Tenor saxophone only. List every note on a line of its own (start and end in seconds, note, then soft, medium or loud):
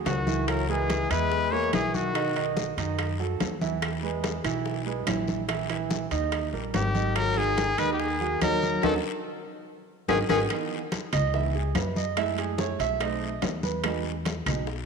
0.06 0.50 D#3 medium
0.48 0.68 F#3 medium
0.69 1.12 E3 medium
1.10 1.53 G#3 medium
1.51 1.73 A#3 medium
1.74 1.96 E3 medium
1.95 2.57 D#3 medium
6.74 7.18 D#3 medium
7.16 7.39 F#3 medium
7.37 7.81 D#3 medium
7.79 7.92 G#3 medium
7.93 8.01 D#3 medium
8.01 8.42 D#3 medium
8.43 8.81 F#3 medium
8.84 8.94 D#3 medium
10.09 10.19 D#3 medium
10.30 10.40 D#3 loud